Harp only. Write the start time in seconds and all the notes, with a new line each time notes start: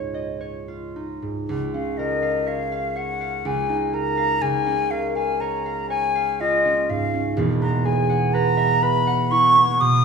Already playing: C#2 G#2 D#4 F4 C#5 D#5
0.14 D#5
0.41 C#5
0.68 F4
0.96 D#4
1.22 G#2
1.49 C#2
1.74 C#4
1.99 A#4
2.22 F5
2.46 C#5
2.72 F5
2.96 C#5
3.21 F5
3.45 C#2
3.69 D#4
3.93 A#4
4.17 F5
4.42 C#2
4.66 C#4
4.91 A#4
5.16 F5
5.41 C#5
5.66 F5
5.90 C#5
6.15 F5
6.41 F4
6.65 C#4
6.89 G#2
7.14 C#4
7.37 E1 E2
7.62 B3
7.85 G#4
8.09 F#5
8.34 B4
8.57 E5
8.83 B4
9.07 F#5
9.32 E4
9.56 B3
9.81 B2